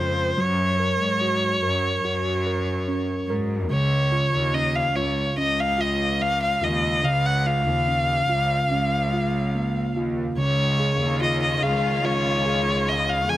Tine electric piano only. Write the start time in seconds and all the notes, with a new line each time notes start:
Already playing: C#3 G#3 C#4 F4
0.37 F#3
0.80 A#4
1.21 F#4
1.63 A#4
2.04 F#4
2.47 A#4
2.88 C#4
3.30 A#4
3.70 C#3
4.12 F4
4.54 C#4
4.96 F4
5.37 C#4
5.78 F4
6.20 G#3
6.62 F4
7.04 C#3
7.46 F4
7.87 C#4
8.29 F4
8.71 C#4
9.13 F4
9.54 A#3
9.96 F4
10.37 C#3
10.80 G#4
11.21 F4
11.63 G#4
12.04 F4
12.46 G#4
12.87 G#3
13.28 G#4